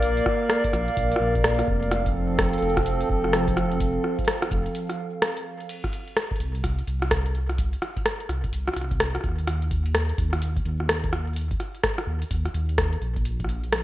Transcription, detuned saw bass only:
0, 0, Header, 1, 2, 480
1, 0, Start_track
1, 0, Tempo, 472441
1, 24, Time_signature, 4, 2, 24, 8
1, 14056, End_track
2, 0, Start_track
2, 0, Title_t, "Detuned saw bass"
2, 0, Program_c, 0, 39
2, 0, Note_on_c, 0, 34, 93
2, 211, Note_off_c, 0, 34, 0
2, 744, Note_on_c, 0, 34, 98
2, 917, Note_off_c, 0, 34, 0
2, 985, Note_on_c, 0, 34, 86
2, 1157, Note_off_c, 0, 34, 0
2, 1224, Note_on_c, 0, 34, 98
2, 1650, Note_off_c, 0, 34, 0
2, 1705, Note_on_c, 0, 29, 89
2, 2611, Note_off_c, 0, 29, 0
2, 2665, Note_on_c, 0, 29, 98
2, 3091, Note_off_c, 0, 29, 0
2, 3145, Note_on_c, 0, 29, 95
2, 4051, Note_off_c, 0, 29, 0
2, 4585, Note_on_c, 0, 29, 100
2, 4757, Note_off_c, 0, 29, 0
2, 6504, Note_on_c, 0, 36, 95
2, 6931, Note_off_c, 0, 36, 0
2, 6984, Note_on_c, 0, 36, 87
2, 7891, Note_off_c, 0, 36, 0
2, 8425, Note_on_c, 0, 36, 98
2, 8597, Note_off_c, 0, 36, 0
2, 8665, Note_on_c, 0, 36, 85
2, 8837, Note_off_c, 0, 36, 0
2, 8905, Note_on_c, 0, 36, 98
2, 9331, Note_off_c, 0, 36, 0
2, 9385, Note_on_c, 0, 39, 85
2, 10291, Note_off_c, 0, 39, 0
2, 10345, Note_on_c, 0, 39, 93
2, 10771, Note_off_c, 0, 39, 0
2, 10825, Note_on_c, 0, 39, 91
2, 11731, Note_off_c, 0, 39, 0
2, 12264, Note_on_c, 0, 39, 96
2, 12437, Note_off_c, 0, 39, 0
2, 12505, Note_on_c, 0, 39, 85
2, 12677, Note_off_c, 0, 39, 0
2, 12744, Note_on_c, 0, 39, 99
2, 13171, Note_off_c, 0, 39, 0
2, 13225, Note_on_c, 0, 34, 87
2, 14056, Note_off_c, 0, 34, 0
2, 14056, End_track
0, 0, End_of_file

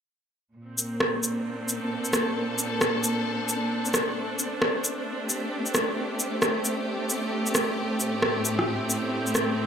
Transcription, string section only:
0, 0, Header, 1, 2, 480
1, 0, Start_track
1, 0, Tempo, 451128
1, 592, Time_signature, 4, 2, 24, 8
1, 10284, End_track
2, 0, Start_track
2, 0, Title_t, "String section"
2, 0, Program_c, 0, 48
2, 588, Note_on_c, 0, 46, 72
2, 687, Note_on_c, 0, 60, 60
2, 812, Note_on_c, 0, 58, 71
2, 1336, Note_on_c, 0, 62, 64
2, 1886, Note_on_c, 0, 69, 77
2, 4430, Note_off_c, 0, 46, 0
2, 4430, Note_off_c, 0, 58, 0
2, 4430, Note_on_c, 0, 57, 77
2, 5062, Note_off_c, 0, 69, 0
2, 5513, Note_on_c, 0, 67, 69
2, 5826, Note_off_c, 0, 60, 0
2, 8271, Note_on_c, 0, 45, 78
2, 8741, Note_on_c, 0, 60, 76
2, 8777, Note_on_c, 0, 64, 61
2, 9828, Note_off_c, 0, 62, 0
2, 10284, Note_off_c, 0, 45, 0
2, 10284, Note_off_c, 0, 57, 0
2, 10284, Note_off_c, 0, 60, 0
2, 10284, Note_off_c, 0, 64, 0
2, 10284, Note_off_c, 0, 67, 0
2, 10284, End_track
0, 0, End_of_file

